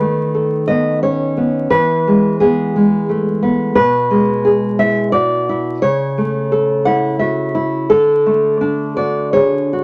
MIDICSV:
0, 0, Header, 1, 2, 480
1, 0, Start_track
1, 0, Key_signature, 4, "major"
1, 0, Tempo, 684932
1, 1214, Time_signature, 3, 2, 24, 8
1, 2637, Key_signature, 3, "major"
1, 5050, Tempo, 705882
1, 6010, Tempo, 740741
1, 6801, End_track
2, 0, Start_track
2, 0, Title_t, "Nylon-string guitar"
2, 0, Program_c, 0, 24
2, 0, Note_on_c, 0, 51, 56
2, 0, Note_on_c, 0, 71, 74
2, 4, Note_on_c, 0, 57, 46
2, 240, Note_on_c, 0, 69, 48
2, 455, Note_off_c, 0, 71, 0
2, 473, Note_on_c, 0, 75, 72
2, 480, Note_on_c, 0, 59, 44
2, 713, Note_off_c, 0, 75, 0
2, 720, Note_on_c, 0, 73, 70
2, 722, Note_off_c, 0, 57, 0
2, 725, Note_on_c, 0, 61, 38
2, 955, Note_off_c, 0, 59, 0
2, 963, Note_on_c, 0, 59, 45
2, 968, Note_off_c, 0, 69, 0
2, 1182, Note_off_c, 0, 51, 0
2, 1188, Note_off_c, 0, 73, 0
2, 1194, Note_on_c, 0, 71, 80
2, 1200, Note_on_c, 0, 52, 64
2, 1209, Note_off_c, 0, 59, 0
2, 1210, Note_off_c, 0, 61, 0
2, 1453, Note_on_c, 0, 56, 51
2, 1662, Note_off_c, 0, 71, 0
2, 1683, Note_on_c, 0, 68, 83
2, 1690, Note_on_c, 0, 59, 57
2, 1925, Note_off_c, 0, 56, 0
2, 1933, Note_on_c, 0, 56, 53
2, 2167, Note_on_c, 0, 57, 43
2, 2392, Note_off_c, 0, 59, 0
2, 2401, Note_on_c, 0, 59, 50
2, 2603, Note_off_c, 0, 52, 0
2, 2605, Note_off_c, 0, 68, 0
2, 2630, Note_on_c, 0, 71, 94
2, 2637, Note_on_c, 0, 47, 68
2, 2638, Note_off_c, 0, 59, 0
2, 2639, Note_off_c, 0, 57, 0
2, 2640, Note_off_c, 0, 56, 0
2, 2877, Note_on_c, 0, 56, 61
2, 3117, Note_on_c, 0, 68, 60
2, 3326, Note_off_c, 0, 71, 0
2, 3357, Note_on_c, 0, 76, 86
2, 3361, Note_on_c, 0, 64, 48
2, 3587, Note_off_c, 0, 76, 0
2, 3589, Note_on_c, 0, 74, 88
2, 3594, Note_off_c, 0, 68, 0
2, 3597, Note_on_c, 0, 66, 46
2, 3599, Note_off_c, 0, 56, 0
2, 3840, Note_off_c, 0, 64, 0
2, 3848, Note_on_c, 0, 64, 56
2, 4055, Note_off_c, 0, 47, 0
2, 4058, Note_off_c, 0, 74, 0
2, 4078, Note_on_c, 0, 73, 90
2, 4082, Note_off_c, 0, 66, 0
2, 4087, Note_off_c, 0, 64, 0
2, 4088, Note_on_c, 0, 49, 69
2, 4330, Note_on_c, 0, 57, 55
2, 4568, Note_on_c, 0, 69, 59
2, 4776, Note_off_c, 0, 73, 0
2, 4803, Note_on_c, 0, 78, 90
2, 4812, Note_on_c, 0, 64, 53
2, 5037, Note_off_c, 0, 78, 0
2, 5041, Note_on_c, 0, 76, 78
2, 5048, Note_off_c, 0, 57, 0
2, 5051, Note_on_c, 0, 66, 43
2, 5274, Note_off_c, 0, 64, 0
2, 5282, Note_on_c, 0, 64, 58
2, 5287, Note_off_c, 0, 69, 0
2, 5502, Note_off_c, 0, 49, 0
2, 5504, Note_off_c, 0, 76, 0
2, 5519, Note_on_c, 0, 69, 89
2, 5524, Note_off_c, 0, 64, 0
2, 5524, Note_off_c, 0, 66, 0
2, 5526, Note_on_c, 0, 50, 69
2, 5769, Note_on_c, 0, 57, 51
2, 6004, Note_on_c, 0, 62, 60
2, 6211, Note_off_c, 0, 69, 0
2, 6236, Note_on_c, 0, 74, 74
2, 6241, Note_on_c, 0, 66, 46
2, 6467, Note_off_c, 0, 74, 0
2, 6471, Note_on_c, 0, 73, 82
2, 6477, Note_on_c, 0, 68, 38
2, 6480, Note_off_c, 0, 57, 0
2, 6723, Note_off_c, 0, 62, 0
2, 6723, Note_off_c, 0, 66, 0
2, 6731, Note_on_c, 0, 66, 48
2, 6801, Note_off_c, 0, 50, 0
2, 6801, Note_off_c, 0, 66, 0
2, 6801, Note_off_c, 0, 68, 0
2, 6801, Note_off_c, 0, 73, 0
2, 6801, End_track
0, 0, End_of_file